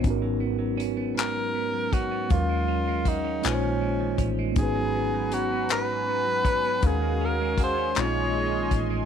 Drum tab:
HH |x-xx-x|x-xx-x|x-xx-x|x-xx-x|
CP |---x--|---x--|---x--|---x--|
BD |o----o|o-o--o|o----o|o-o--o|